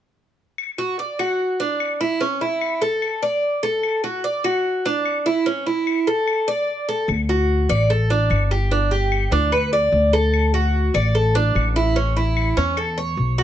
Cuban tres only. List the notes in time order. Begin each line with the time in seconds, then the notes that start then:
0.78 F#4
0.99 D5
1.19 F#4
1.60 D4
2.01 E4
2.21 C#4
2.41 E4
2.82 A4
3.23 D5
3.63 A4
4.04 F#4
4.24 D5
4.44 F#4
4.86 D4
5.26 E4
5.46 C#4
5.66 E4
6.07 A4
6.48 D5
6.89 A4
7.29 F#4
7.69 D5
7.90 A4
8.10 D4
8.51 G4
8.71 D4
8.91 G4
9.32 D4
9.52 B4
9.73 D5
10.13 A4
10.54 F#4
10.94 D5
11.15 A4
11.35 D4
11.76 E4
11.96 C#4
12.17 E4
12.57 C#4
12.77 A4
12.98 C#5
13.38 F#4